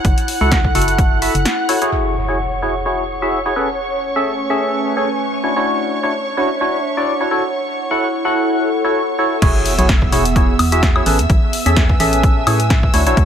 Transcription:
Already playing: E4 C#5 F#5 F#6
0.05 F#1 A4, kick, closed hi-hat
0.18 closed hi-hat
0.28 open hi-hat
0.41 C#2 E4 F#4 A4 F#5
0.52 kick, snare, closed hi-hat
0.64 kick
0.75 F#1 E4 F#4 A4 F#5, open hi-hat
0.82 closed hi-hat
0.88 closed hi-hat
0.98 kick, closed hi-hat
1.22 E4 F#4 A4 E5, open hi-hat
1.35 F#1, closed hi-hat
1.45 snare, closed hi-hat
1.69 E4 F#4 A4 C#5, open hi-hat
1.82 E4 F#4 G#4 C#5, closed hi-hat
1.92 C#5 C#6, impact
2.12 G#4
2.28 E4 F#4 G#4 C#5
2.59 E4 F#4 G#4 C#5
2.86 E4 F#4 G#4 C#5
3.22 E4 F#4 G#4 E5
3.46 E4 F#4 G#4 C#5
3.56 C#4 G#4 A4 B4
3.88 A3
4.07 B4
4.16 C#4 G#4 A4 E5
4.42 G#5
4.50 C#4 G#4 A4 E5
4.97 C#4 G#4 A4 C#5
5.44 D4 E4 F#4 C#5
5.56 D4 E4 F#4 C#5
5.62 F#5
5.84 E5
6.03 D4 E4 F#4 C#5
6.37 D4 E4 F#4 C#5
6.61 D4 E4 F#4 C#5
6.97 D4 E4 F#4 D5
7.21 D4 E4 F#4 C#5
7.31 E4 F#4 A4 C#5
7.71 A4
7.91 E4 F#4 A4 F#5
8.25 E4 F#4 A4 F#5
8.85 E4 F#4 A4 C#5
9.19 E4 F#4 A4 C#5
9.42 E1 B3 E4 F#4 G#4 C#5 E5 E6, kick, closed hi-hat, crash, impact
9.49 G#4
9.66 open hi-hat
9.78 B1 E4 F#4 G#4 C#5, closed hi-hat
9.89 kick, snare, closed hi-hat
10.02 kick
10.12 E1 E4 F#4 G#4 C#5, open hi-hat
10.25 closed hi-hat
10.36 E4 F#4 G#4 C#5, kick, closed hi-hat
10.59 E2, open hi-hat, high woodblock
10.72 E4 F#4 G#4 E5, closed hi-hat
10.83 kick, snare, closed hi-hat
10.96 E4 F#4 G#4 C#5, high woodblock
11.06 A1 C#4 G#4 A4 B4, open hi-hat
11.19 E2, closed hi-hat
11.23 B4
11.30 A1, kick, closed hi-hat
11.39 G#5
11.53 open hi-hat
11.66 E2 C#4 G#4 A4 E5, closed hi-hat
11.76 kick, snare, closed hi-hat
11.89 kick
12.00 A1 C#4 G#4 A4 E5, open hi-hat
12.13 closed hi-hat
12.23 kick, closed hi-hat
12.47 A2 C#4 G#4 A4 C#5, open hi-hat, high woodblock
12.60 closed hi-hat
12.70 kick, snare, closed hi-hat
12.83 kick
12.94 D2 D4 E4 F#4 C#5, open hi-hat
13.07 A1 D4 E4 F#4 C#5, closed hi-hat
13.17 D2, kick, closed hi-hat

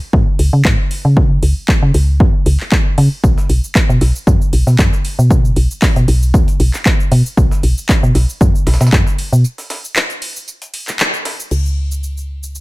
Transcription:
0.13 G#2, kick
0.39 C#2, open hi-hat
0.53 C#3
0.65 G#2, kick, clap
0.91 open hi-hat
1.05 C#3
1.17 kick
1.43 C#2, open hi-hat
1.68 kick, clap
1.82 C#3
1.94 C#2, open hi-hat
2.20 F#2, kick
2.46 C#2, open hi-hat
2.60 clap
2.72 kick, clap
2.98 C#3, open hi-hat
3.24 B1, kick, tambourine, shaker
3.38 snare, shaker
3.49 B1, open hi-hat, tambourine
3.64 shaker
3.75 kick, snare, clap, tambourine, shaker
3.89 B2, shaker
4.01 B1, snare, open hi-hat, tambourine
4.16 shaker
4.27 F#2, kick, tambourine, shaker
4.42 shaker
4.53 B1, open hi-hat, tambourine
4.67 B2, snare, shaker
4.79 F#2, kick, snare, clap, tambourine, shaker
4.93 snare, shaker
5.05 open hi-hat, tambourine
5.19 B2, shaker
5.30 kick, tambourine, shaker
5.45 shaker
5.56 B1, open hi-hat, tambourine
5.71 shaker
5.82 kick, snare, clap, open hi-hat, shaker
5.96 B2, closed hi-hat, shaker
6.08 B1, open hi-hat, tambourine
6.23 shaker
6.34 D#2, kick, tambourine, shaker
6.48 closed hi-hat, shaker
6.60 B1, open hi-hat, tambourine
6.74 snare, clap, shaker
6.86 kick, snare, clap, tambourine, shaker
7.00 shaker
7.12 B2, open hi-hat, tambourine
7.26 shaker
7.37 B1, kick, tambourine, shaker
7.51 snare, shaker
7.63 B1, open hi-hat, tambourine
7.78 shaker
7.89 kick, snare, clap, tambourine, shaker
8.03 B2, shaker
8.15 B1, snare, open hi-hat, tambourine
8.29 shaker
8.41 F#2, kick, tambourine, shaker
8.55 shaker
8.67 B1, snare, open hi-hat, tambourine
8.74 snare, tambourine
8.81 B2, snare, tambourine, shaker
8.87 snare, tambourine
8.93 F#2, kick, snare, clap, tambourine, shaker
9.07 snare, shaker
9.18 open hi-hat, tambourine
9.32 B2, shaker
9.44 tambourine, shaker
9.58 snare, open hi-hat, shaker
9.70 snare, open hi-hat, tambourine
9.85 shaker
9.96 snare, clap, tambourine, shaker
10.10 closed hi-hat, shaker
10.22 open hi-hat, tambourine
10.36 shaker
10.48 tambourine, shaker
10.62 closed hi-hat, shaker
10.74 open hi-hat, tambourine
10.88 snare, clap, shaker
11.00 clap, tambourine, shaker
11.14 shaker
11.25 snare, open hi-hat, tambourine
11.40 shaker
11.51 C#2, crash, shaker
11.66 shaker
11.91 shaker
12.03 shaker
12.17 shaker
12.43 shaker
12.55 shaker

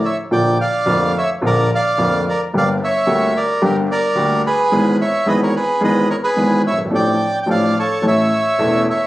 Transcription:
0.05 C#5 E5
0.31 A#1 A#2 D3 F3 A#3 F4 D5 G5
0.61 D5 F5
0.85 F1 F2 D3 F3 A#3 F4
1.18 C#5 E5
1.41 A#1 A#2 D3 F3 A#3 F4
1.46 A#4 D5
1.75 D5 F5
1.97 F1 F2 D3 F3 A#3 F4
2.29 A#4 D5
2.54 G1 G2 D3 G3 A#3 G4
2.58 D5 F5
2.84 C#5 E5
3.07 D2 D3 G3 A#3 G4
3.37 A#4 D5
3.62 G1 G2 D3 G3 A#3 G4 A#4
3.91 A#4 D5
4.15 D2 D3 G3 A#3 G4
4.46 G#4 B4
4.72 G#1 G#2 E3 G#3 B3 G#4
5.01 C#5 E5
5.26 G#1 G#2 E3 G#3 B3 G#4 B4 D#5
5.43 A#4 C#5
5.56 G#4 B4
5.81 G#1 G#2 E3 G#3 B3 G#4 B4 D#5
6.10 A#4 C#5
6.24 G#4 B4
6.36 G#1 G#2 E3 G#3 B3 G#4
6.67 C#5 E5
6.72 F#1
6.78 G1
6.85 G#1
6.90 A1 A2 F3 A3 D4 A4
6.95 D5 G5
7.43 A1 A2 F3 A3 D4 G5
7.47 A4 D5 F5
7.79 A4 C#5
8.02 A1 A2 E3 A3 C#4 A4
8.07 C#5 E5
8.59 E1 E2 E3 A3 C#4 A4
8.90 C#5 E5

